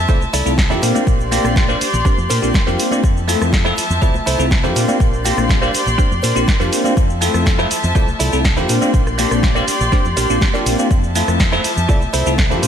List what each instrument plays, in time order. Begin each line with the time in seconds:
Already playing: string section F3 E5 A5
0.08 tine electric piano A3 C4 E4 F4 D5, clean electric guitar E4 F4 A4 C5, kick, shaker
0.21 high conga, shaker
0.33 fingered electric bass C2, clean electric guitar E4 F4 A4 D5, open hi-hat, shaker
0.45 fingered electric bass C2, tine electric piano A3 C4 E4 F4 A4, shaker
0.58 kick, snare, high conga, shaker
0.70 fingered electric bass F2, tine electric piano A#3 C4 D4 F4 G4, clean electric guitar E4 F4 A4 D5, shaker
0.82 fingered electric bass A#2, clean electric guitar D4 G4 A#4 C5, string section G4 D5 C6, open hi-hat, shaker
0.95 tine electric piano A#3 C4 D4 F4 G4, high conga, shaker
1.07 fingered electric bass A#1, kick, shaker
1.19 shaker
1.31 tine electric piano A#3 C4 D4 F4 G4, open hi-hat, high conga, shaker
1.44 fingered electric bass A#1, cross-stick, shaker
1.56 kick, snare, shaker
1.68 tine electric piano A#3 C4 D4 F4 G4, clean electric guitar D4 G4 A#4 C5, high conga, shaker
1.81 muted fingered electric bass stroke, open hi-hat, shaker
1.93 fingered electric bass A#1, low conga, shaker
2.05 tine electric piano A#3 C4 D4 F4 C5, clean electric guitar D4 G4 A#4 C5, kick, shaker
2.18 fingered electric bass F2, high conga, shaker
2.29 fingered electric bass A#2, clean electric guitar D4 G4 A#4 C5, open hi-hat, shaker
2.42 fingered electric bass A#1, tine electric piano A#3 C4 D4 F4 G4, shaker
2.54 kick, snare, high conga, shaker
2.67 fingered electric bass F2, tine electric piano A#3 C4 D4 F4 G4, clean electric guitar D4 G4 A#4 C5, shaker
2.79 open hi-hat, shaker
2.91 tine electric piano A#3 C4 D4 F4 G4, high conga, shaker
3.03 fingered electric bass F2, string section F3 E5 A5, kick, shaker
3.17 shaker
3.28 tine electric piano A3 C4 E4 F4 A4, open hi-hat, high conga, shaker
3.41 fingered electric bass F2, cross-stick, shaker
3.53 kick, snare, shaker
3.65 tine electric piano A3 C4 E4 F4 A4, clean electric guitar E4 F4 A4 C5, high conga, shaker
3.77 muted fingered electric bass stroke, open hi-hat, shaker
3.90 fingered electric bass F2, low conga, shaker
4.02 fingered electric bass C2, tine electric piano A3 C4 E4 F4 D5, clean electric guitar E4 F4 A4 C5, kick, shaker
4.14 high conga, shaker
4.26 fingered electric bass C2, clean electric guitar E4 F4 A4 C5, open hi-hat, shaker
4.39 fingered electric bass C2, tine electric piano A3 C4 E4 F4 A4, shaker
4.51 kick, snare, high conga, shaker
4.63 fingered electric bass F2, tine electric piano A#3 C4 D4 F4 G4, clean electric guitar E4 F4 A4 C5, shaker
4.75 fingered electric bass A#2, clean electric guitar D4 G4 A#4 C5, string section G4 D5 C6, open hi-hat, shaker
4.88 tine electric piano A#3 C4 D4 F4 G4, high conga, shaker
5.00 fingered electric bass A#1, kick, shaker
5.13 shaker
5.24 tine electric piano A#3 C4 D4 F4 G4, open hi-hat, high conga, shaker
5.37 fingered electric bass A#1, cross-stick, shaker
5.49 kick, snare, shaker
5.62 tine electric piano A#3 C4 D4 F4 G4, clean electric guitar D4 G4 A#4 C5, high conga, shaker
5.74 muted fingered electric bass stroke, open hi-hat, shaker
5.86 fingered electric bass A#1, low conga, shaker
5.98 tine electric piano A#3 C4 D4 F4 C5, clean electric guitar D4 G4 A#4 C5, kick, shaker
6.11 fingered electric bass F2, high conga, shaker
6.22 fingered electric bass A#2, clean electric guitar D4 G4 A#4 C5, open hi-hat, shaker
6.24 shaker
6.35 fingered electric bass A#1, tine electric piano A#3 C4 D4 F4 G4, shaker
6.47 kick, snare, high conga, shaker
6.60 fingered electric bass F2, tine electric piano A#3 C4 D4 F4 G4, clean electric guitar D4 G4 A#4 C5, shaker
6.73 open hi-hat, shaker
6.84 tine electric piano A#3 C4 D4 F4 G4, high conga, shaker
6.97 fingered electric bass F2, string section F3 E5 A5, kick, shaker
7.10 shaker
7.21 tine electric piano A3 C4 E4 F4 A4, open hi-hat, high conga, shaker
7.34 fingered electric bass F2, cross-stick, shaker
7.46 kick, snare, shaker
7.58 tine electric piano A3 C4 E4 F4 A4, clean electric guitar E4 F4 A4 C5, high conga, shaker
7.71 muted fingered electric bass stroke, open hi-hat, shaker
7.84 fingered electric bass F2, low conga, shaker
7.95 tine electric piano A3 C4 E4 F4 D5, clean electric guitar E4 F4 A4 C5, kick, shaker
8.08 high conga, shaker
8.19 fingered electric bass C2, clean electric guitar E4 F4 A4 D5, open hi-hat, shaker
8.32 fingered electric bass C2, tine electric piano A3 C4 E4 F4 A4, shaker
8.45 kick, snare, high conga, shaker
8.57 fingered electric bass F2, tine electric piano A#3 C4 D4 F4 G4, clean electric guitar E4 F4 A4 C5, shaker
8.69 fingered electric bass A#2, clean electric guitar D4 G4 A#4 C5, string section G4 D5 C6, open hi-hat, shaker
8.81 tine electric piano A#3 C4 D4 F4 G4, high conga, shaker
8.94 fingered electric bass A#1, kick, shaker
9.07 cross-stick, shaker
9.18 tine electric piano A#3 C4 D4 F4 G4, open hi-hat, high conga, shaker
9.31 fingered electric bass A#1, cross-stick, shaker
9.43 kick, snare, shaker
9.55 tine electric piano A#3 C4 D4 F4 G4, clean electric guitar D4 G4 A#4 D5, high conga, shaker
9.68 muted fingered electric bass stroke, open hi-hat, shaker
9.81 fingered electric bass A#1, low conga, shaker
9.92 tine electric piano A#3 C4 D4 F4 C5, clean electric guitar D4 G4 A#4 C5, kick, snare, shaker
10.05 fingered electric bass F2, high conga, low conga, shaker
10.17 fingered electric bass A#1, clean electric guitar D4 G4 A#4 D5, open hi-hat, shaker
10.30 fingered electric bass A#1, tine electric piano A#3 C4 D4 F4 G4, shaker
10.41 kick, snare, high conga, shaker
10.54 tine electric piano A#3 C4 D4 F4 G4, clean electric guitar D4 G4 A#4 D5, shaker
10.66 fingered electric bass A#1, open hi-hat, shaker
10.78 tine electric piano A#3 C4 D4 F4 G4, high conga, shaker
10.91 fingered electric bass F2, string section F3 E5 A5, kick, shaker
11.04 shaker
11.15 tine electric piano A3 C4 E4 F4 A4, open hi-hat, high conga, shaker
11.28 fingered electric bass F2, cross-stick, shaker
11.40 kick, snare, shaker
11.52 tine electric piano A3 C4 E4 F4 A4, clean electric guitar E4 F4 A4 C5, high conga, shaker
11.64 muted fingered electric bass stroke, open hi-hat, shaker
11.76 fingered electric bass F2, low conga, shaker
11.89 tine electric piano A3 C4 E4 F4 D5, clean electric guitar E4 F4 A4 D5, kick, shaker
12.02 high conga, shaker
12.13 fingered electric bass C2, clean electric guitar E4 F4 A4 C5, open hi-hat, shaker
12.26 fingered electric bass C2, tine electric piano A3 C4 E4 F4 A4, shaker
12.38 kick, snare, high conga, shaker
12.50 fingered electric bass F2, tine electric piano A#3 C4 D4 F4 G4, clean electric guitar E4 F4 A4 C5, shaker
12.62 fingered electric bass A#2, clean electric guitar D4 G4 A#4 C5, string section G4 D5 C6, open hi-hat, shaker